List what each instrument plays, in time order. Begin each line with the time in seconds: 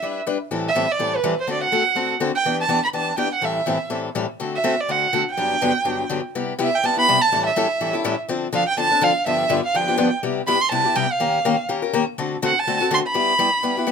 Already playing: violin E5
0.02 steel-string acoustic guitar G3 D4 E4 B4
0.27 steel-string acoustic guitar G3 D4 E4 B4
0.51 steel-string acoustic guitar A2 E3 G3 C4 E4 A4
0.69 violin E5
0.75 steel-string acoustic guitar A2 E3 G3 C4 E4 A4
0.92 violin D5
0.99 steel-string acoustic guitar A2 E3 G3 C4 E4 A4
1.16 violin B4
1.24 steel-string acoustic guitar A2 E3 G3 C4 E4 A4
1.41 violin C5
1.47 steel-string acoustic guitar D3 A3 C4 F#4 A4
1.52 violin D5
1.64 violin F#5
1.72 steel-string acoustic guitar D3 A3 C4 F#4 A4
1.95 steel-string acoustic guitar D3 A3 C4 F#4 A4
2.20 steel-string acoustic guitar D3 A3 C4 F#4 A4
2.35 violin G5
2.45 steel-string acoustic guitar E3 B3 D4 G4
2.61 violin A5
2.69 steel-string acoustic guitar E3 B3 D4 G4
2.84 violin B5
2.93 steel-string acoustic guitar E3 B3 D4 G4, violin A5
3.17 steel-string acoustic guitar E3 B3 D4 G4, violin G5
3.34 violin F#5
3.41 steel-string acoustic guitar A2 E3 G3 C4 E4 A4, violin E5
3.66 steel-string acoustic guitar A2 E3 G3 C4 E4 A4
3.90 steel-string acoustic guitar A2 E3 G3 C4 E4 A4
4.15 steel-string acoustic guitar A2 E3 G3 C4 E4 A4
4.40 steel-string acoustic guitar D3 A3 C4 F#4 A4
4.56 violin E5
4.64 steel-string acoustic guitar D3 A3 C4 F#4 A4
4.81 violin D5
4.89 steel-string acoustic guitar D3 A3 C4 F#4 A4, violin F#5
5.13 steel-string acoustic guitar D3 A3 C4 F#4 A4
5.31 violin G5
5.37 steel-string acoustic guitar G2 D3 F#3 B3 D4 G4
5.61 steel-string acoustic guitar G2 D3 F#3 B3 D4 G4
5.85 steel-string acoustic guitar G2 D3 F#3 B3 D4 G4
6.09 steel-string acoustic guitar G2 D3 F#3 B3 D4 G4
6.35 steel-string acoustic guitar C3 G3 B3 E4 G4
6.59 steel-string acoustic guitar C3 G3 B3 E4 G4
6.63 violin E5
6.76 violin G5
6.83 steel-string acoustic guitar C3 G3 B3 E4 G4, violin A5
6.96 steel-string acoustic guitar B3 E4 G4, violin B5
7.08 steel-string acoustic guitar C3 G3 B3 E4 G4
7.22 violin A5
7.32 steel-string acoustic guitar A2 E3 G3 C#4 E4 A4
7.47 violin E5
7.56 steel-string acoustic guitar A2 E3 G3 C#4 E4 A4
7.81 steel-string acoustic guitar A2 E3 G3 C#4 E4 A4
7.93 steel-string acoustic guitar G3 C#4 E4 A4
8.04 steel-string acoustic guitar A2 E3 G3 C#4 E4 A4
8.28 steel-string acoustic guitar D3 F3 C4 D4 A4
8.53 steel-string acoustic guitar D3 F3 C4 D4 A4, violin F5
8.68 violin G5
8.77 steel-string acoustic guitar D3 F3 C4 D4 A4, violin A5
8.91 steel-string acoustic guitar C4 D4 A4
9.01 steel-string acoustic guitar D3 F3 C4 D4 A4, violin F5
9.26 steel-string acoustic guitar G2 D3 F3 B3 D4 G4, violin E5
9.49 steel-string acoustic guitar G2 D3 F3 B3 D4 G4
9.66 violin F5
9.74 steel-string acoustic guitar G2 D3 F3 B3 D4 G4, violin G5
9.88 steel-string acoustic guitar F3 B3 D4 G4
9.98 steel-string acoustic guitar G2 D3 F3 B3 D4 G4
10.23 steel-string acoustic guitar C3 G3 B3 E4 G4
10.47 steel-string acoustic guitar C3 G3 B3 E4 G4, violin B5
10.61 violin C6
10.71 steel-string acoustic guitar C3 G3 B3 E4 G4, violin A5
10.85 steel-string acoustic guitar B3 E4 G4
10.95 steel-string acoustic guitar C3 G3 B3 E4 G4, violin G5
11.13 violin F5
11.20 steel-string acoustic guitar D#3 A#3 C#4 G4 A#4
11.45 steel-string acoustic guitar D#3 A#3 C#4 G4 A#4
11.69 steel-string acoustic guitar D#3 A#3 C#4 G4 A#4
11.82 steel-string acoustic guitar C#4 G4 A#4
11.93 steel-string acoustic guitar D#3 A#3 C#4 G4 A#4
12.18 steel-string acoustic guitar D3 A3 C4 F#4 A4
12.42 steel-string acoustic guitar D3 A3 C4 F#4 A4, violin F#5
12.60 violin A5
12.67 steel-string acoustic guitar D3 A3 C4 F#4 A4
12.80 steel-string acoustic guitar C4 F#4 A4
12.91 steel-string acoustic guitar D3 A3 C4 F#4 A4, violin C6
13.07 violin B5
13.14 steel-string acoustic guitar G3 B3 E4 G4
13.39 steel-string acoustic guitar G3 B3 E4 G4
13.63 steel-string acoustic guitar G3 B3 E4 G4
13.77 steel-string acoustic guitar B3 E4 G4
13.87 steel-string acoustic guitar G3 B3 E4 G4